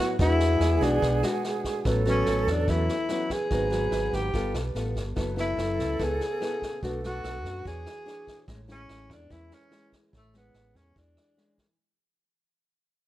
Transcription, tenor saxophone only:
0, 0, Header, 1, 2, 480
1, 0, Start_track
1, 0, Key_signature, 3, "major"
1, 0, Tempo, 414079
1, 223, Time_signature, 4, 2, 24, 8
1, 15152, End_track
2, 0, Start_track
2, 0, Title_t, "Tenor saxophone"
2, 0, Program_c, 0, 66
2, 0, Note_on_c, 0, 66, 107
2, 186, Note_off_c, 0, 66, 0
2, 251, Note_on_c, 0, 64, 90
2, 965, Note_on_c, 0, 62, 77
2, 982, Note_off_c, 0, 64, 0
2, 1434, Note_off_c, 0, 62, 0
2, 2434, Note_on_c, 0, 61, 85
2, 2900, Note_on_c, 0, 62, 77
2, 2917, Note_off_c, 0, 61, 0
2, 3135, Note_on_c, 0, 64, 85
2, 3152, Note_off_c, 0, 62, 0
2, 3846, Note_on_c, 0, 68, 99
2, 3864, Note_off_c, 0, 64, 0
2, 4799, Note_on_c, 0, 67, 84
2, 4817, Note_off_c, 0, 68, 0
2, 5272, Note_off_c, 0, 67, 0
2, 6264, Note_on_c, 0, 64, 97
2, 6994, Note_on_c, 0, 68, 100
2, 7011, Note_off_c, 0, 64, 0
2, 7929, Note_off_c, 0, 68, 0
2, 8185, Note_on_c, 0, 66, 98
2, 8838, Note_off_c, 0, 66, 0
2, 8897, Note_on_c, 0, 68, 99
2, 9794, Note_off_c, 0, 68, 0
2, 10102, Note_on_c, 0, 61, 90
2, 10582, Note_on_c, 0, 62, 79
2, 10600, Note_off_c, 0, 61, 0
2, 10810, Note_on_c, 0, 64, 86
2, 10827, Note_off_c, 0, 62, 0
2, 11060, Note_on_c, 0, 61, 83
2, 11077, Note_off_c, 0, 64, 0
2, 11522, Note_off_c, 0, 61, 0
2, 11782, Note_on_c, 0, 57, 80
2, 11987, Note_off_c, 0, 57, 0
2, 12017, Note_on_c, 0, 59, 83
2, 12481, Note_on_c, 0, 61, 79
2, 12499, Note_off_c, 0, 59, 0
2, 12728, Note_on_c, 0, 62, 75
2, 12746, Note_off_c, 0, 61, 0
2, 13436, Note_off_c, 0, 62, 0
2, 15152, End_track
0, 0, End_of_file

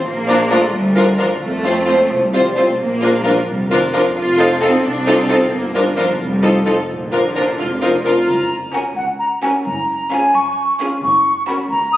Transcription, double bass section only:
0, 0, Header, 1, 2, 480
1, 0, Start_track
1, 0, Key_signature, -2, "major"
1, 0, Tempo, 456621
1, 48, Time_signature, 6, 3, 24, 8
1, 8706, Key_signature, 6, "major"
1, 12585, End_track
2, 0, Start_track
2, 0, Title_t, "Double bass section"
2, 0, Program_c, 0, 48
2, 54, Note_on_c, 0, 34, 68
2, 644, Note_off_c, 0, 34, 0
2, 762, Note_on_c, 0, 38, 71
2, 1359, Note_off_c, 0, 38, 0
2, 1480, Note_on_c, 0, 41, 59
2, 2085, Note_off_c, 0, 41, 0
2, 2201, Note_on_c, 0, 36, 59
2, 2807, Note_off_c, 0, 36, 0
2, 2930, Note_on_c, 0, 34, 55
2, 3532, Note_off_c, 0, 34, 0
2, 3651, Note_on_c, 0, 29, 57
2, 4251, Note_off_c, 0, 29, 0
2, 4376, Note_on_c, 0, 29, 64
2, 4971, Note_off_c, 0, 29, 0
2, 5086, Note_on_c, 0, 36, 66
2, 5681, Note_off_c, 0, 36, 0
2, 5800, Note_on_c, 0, 31, 64
2, 6396, Note_off_c, 0, 31, 0
2, 6512, Note_on_c, 0, 29, 57
2, 7121, Note_off_c, 0, 29, 0
2, 7249, Note_on_c, 0, 34, 54
2, 7856, Note_off_c, 0, 34, 0
2, 7977, Note_on_c, 0, 29, 47
2, 8586, Note_off_c, 0, 29, 0
2, 8699, Note_on_c, 0, 30, 49
2, 9151, Note_off_c, 0, 30, 0
2, 10150, Note_on_c, 0, 30, 48
2, 10599, Note_off_c, 0, 30, 0
2, 11586, Note_on_c, 0, 30, 51
2, 12027, Note_off_c, 0, 30, 0
2, 12585, End_track
0, 0, End_of_file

